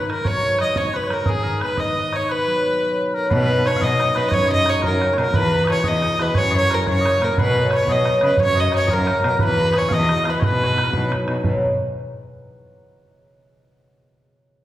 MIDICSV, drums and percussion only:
0, 0, Header, 1, 2, 480
1, 0, Start_track
1, 0, Key_signature, 5, "major"
1, 0, Tempo, 339367
1, 361, Time_signature, 6, 3, 24, 8
1, 20715, End_track
2, 0, Start_track
2, 0, Title_t, "Bodhran"
2, 138, Note_on_c, 9, 64, 66
2, 279, Note_off_c, 9, 64, 0
2, 354, Note_on_c, 9, 64, 81
2, 496, Note_off_c, 9, 64, 0
2, 621, Note_on_c, 9, 64, 26
2, 762, Note_off_c, 9, 64, 0
2, 829, Note_on_c, 9, 64, 65
2, 970, Note_off_c, 9, 64, 0
2, 1072, Note_on_c, 9, 64, 93
2, 1207, Note_off_c, 9, 64, 0
2, 1207, Note_on_c, 9, 64, 25
2, 1348, Note_off_c, 9, 64, 0
2, 1562, Note_on_c, 9, 64, 73
2, 1703, Note_off_c, 9, 64, 0
2, 1778, Note_on_c, 9, 64, 82
2, 1920, Note_off_c, 9, 64, 0
2, 1922, Note_on_c, 9, 64, 22
2, 2064, Note_off_c, 9, 64, 0
2, 2281, Note_on_c, 9, 64, 70
2, 2423, Note_off_c, 9, 64, 0
2, 2511, Note_on_c, 9, 64, 78
2, 2652, Note_off_c, 9, 64, 0
2, 2652, Note_on_c, 9, 64, 24
2, 2793, Note_off_c, 9, 64, 0
2, 3007, Note_on_c, 9, 64, 54
2, 3148, Note_off_c, 9, 64, 0
2, 4681, Note_on_c, 9, 64, 75
2, 4814, Note_off_c, 9, 64, 0
2, 4814, Note_on_c, 9, 64, 27
2, 4946, Note_off_c, 9, 64, 0
2, 4946, Note_on_c, 9, 64, 28
2, 5087, Note_off_c, 9, 64, 0
2, 5174, Note_on_c, 9, 64, 65
2, 5301, Note_off_c, 9, 64, 0
2, 5301, Note_on_c, 9, 64, 26
2, 5403, Note_off_c, 9, 64, 0
2, 5403, Note_on_c, 9, 64, 73
2, 5544, Note_off_c, 9, 64, 0
2, 5655, Note_on_c, 9, 64, 58
2, 5796, Note_off_c, 9, 64, 0
2, 5883, Note_on_c, 9, 64, 58
2, 6024, Note_off_c, 9, 64, 0
2, 6105, Note_on_c, 9, 64, 77
2, 6237, Note_off_c, 9, 64, 0
2, 6237, Note_on_c, 9, 64, 25
2, 6359, Note_off_c, 9, 64, 0
2, 6359, Note_on_c, 9, 64, 26
2, 6500, Note_off_c, 9, 64, 0
2, 6589, Note_on_c, 9, 64, 67
2, 6714, Note_off_c, 9, 64, 0
2, 6714, Note_on_c, 9, 64, 31
2, 6838, Note_off_c, 9, 64, 0
2, 6838, Note_on_c, 9, 64, 87
2, 6980, Note_off_c, 9, 64, 0
2, 7094, Note_on_c, 9, 64, 61
2, 7235, Note_off_c, 9, 64, 0
2, 7329, Note_on_c, 9, 64, 65
2, 7470, Note_off_c, 9, 64, 0
2, 7549, Note_on_c, 9, 64, 93
2, 7677, Note_off_c, 9, 64, 0
2, 7677, Note_on_c, 9, 64, 24
2, 7798, Note_off_c, 9, 64, 0
2, 7798, Note_on_c, 9, 64, 28
2, 7939, Note_off_c, 9, 64, 0
2, 8024, Note_on_c, 9, 64, 73
2, 8148, Note_off_c, 9, 64, 0
2, 8148, Note_on_c, 9, 64, 28
2, 8255, Note_off_c, 9, 64, 0
2, 8255, Note_on_c, 9, 64, 90
2, 8396, Note_off_c, 9, 64, 0
2, 8517, Note_on_c, 9, 64, 63
2, 8658, Note_off_c, 9, 64, 0
2, 8759, Note_on_c, 9, 64, 57
2, 8901, Note_off_c, 9, 64, 0
2, 8979, Note_on_c, 9, 64, 84
2, 9120, Note_off_c, 9, 64, 0
2, 9123, Note_on_c, 9, 64, 22
2, 9265, Note_off_c, 9, 64, 0
2, 9265, Note_on_c, 9, 64, 27
2, 9406, Note_off_c, 9, 64, 0
2, 9490, Note_on_c, 9, 64, 60
2, 9610, Note_off_c, 9, 64, 0
2, 9610, Note_on_c, 9, 64, 30
2, 9718, Note_off_c, 9, 64, 0
2, 9718, Note_on_c, 9, 64, 79
2, 9860, Note_off_c, 9, 64, 0
2, 9979, Note_on_c, 9, 64, 72
2, 10121, Note_off_c, 9, 64, 0
2, 10213, Note_on_c, 9, 64, 60
2, 10354, Note_off_c, 9, 64, 0
2, 10437, Note_on_c, 9, 64, 87
2, 10562, Note_off_c, 9, 64, 0
2, 10562, Note_on_c, 9, 64, 23
2, 10679, Note_off_c, 9, 64, 0
2, 10679, Note_on_c, 9, 64, 26
2, 10821, Note_off_c, 9, 64, 0
2, 10901, Note_on_c, 9, 64, 69
2, 11033, Note_off_c, 9, 64, 0
2, 11033, Note_on_c, 9, 64, 30
2, 11141, Note_off_c, 9, 64, 0
2, 11141, Note_on_c, 9, 64, 85
2, 11283, Note_off_c, 9, 64, 0
2, 11393, Note_on_c, 9, 64, 63
2, 11534, Note_off_c, 9, 64, 0
2, 11614, Note_on_c, 9, 64, 60
2, 11755, Note_off_c, 9, 64, 0
2, 11846, Note_on_c, 9, 64, 85
2, 11987, Note_off_c, 9, 64, 0
2, 11987, Note_on_c, 9, 64, 24
2, 12107, Note_off_c, 9, 64, 0
2, 12107, Note_on_c, 9, 64, 27
2, 12248, Note_off_c, 9, 64, 0
2, 12335, Note_on_c, 9, 64, 57
2, 12462, Note_off_c, 9, 64, 0
2, 12462, Note_on_c, 9, 64, 31
2, 12564, Note_off_c, 9, 64, 0
2, 12564, Note_on_c, 9, 64, 93
2, 12706, Note_off_c, 9, 64, 0
2, 12830, Note_on_c, 9, 64, 62
2, 12972, Note_off_c, 9, 64, 0
2, 13073, Note_on_c, 9, 64, 66
2, 13214, Note_off_c, 9, 64, 0
2, 13283, Note_on_c, 9, 64, 95
2, 13415, Note_off_c, 9, 64, 0
2, 13415, Note_on_c, 9, 64, 29
2, 13546, Note_off_c, 9, 64, 0
2, 13546, Note_on_c, 9, 64, 32
2, 13687, Note_off_c, 9, 64, 0
2, 13771, Note_on_c, 9, 64, 75
2, 13889, Note_off_c, 9, 64, 0
2, 13889, Note_on_c, 9, 64, 28
2, 14017, Note_off_c, 9, 64, 0
2, 14017, Note_on_c, 9, 64, 97
2, 14158, Note_off_c, 9, 64, 0
2, 14271, Note_on_c, 9, 64, 65
2, 14413, Note_off_c, 9, 64, 0
2, 14502, Note_on_c, 9, 64, 68
2, 14644, Note_off_c, 9, 64, 0
2, 14742, Note_on_c, 9, 64, 90
2, 14884, Note_off_c, 9, 64, 0
2, 14885, Note_on_c, 9, 64, 27
2, 15021, Note_off_c, 9, 64, 0
2, 15021, Note_on_c, 9, 64, 27
2, 15162, Note_off_c, 9, 64, 0
2, 15250, Note_on_c, 9, 64, 71
2, 15358, Note_off_c, 9, 64, 0
2, 15358, Note_on_c, 9, 64, 28
2, 15464, Note_off_c, 9, 64, 0
2, 15464, Note_on_c, 9, 64, 83
2, 15606, Note_off_c, 9, 64, 0
2, 15726, Note_on_c, 9, 64, 63
2, 15868, Note_off_c, 9, 64, 0
2, 15951, Note_on_c, 9, 64, 64
2, 16093, Note_off_c, 9, 64, 0
2, 16185, Note_on_c, 9, 64, 88
2, 16326, Note_off_c, 9, 64, 0
2, 20715, End_track
0, 0, End_of_file